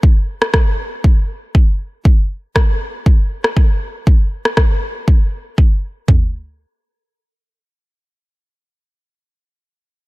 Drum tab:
SD |---rr-----------|----r------r----|---rr-----------|----------------|
FT |----------------|----------------|----------------|o---------------|
BD |o---o---o---o---|o---o---o---o---|o---o---o---o---|o---------------|

SD |----------------|
FT |----------------|
BD |----------------|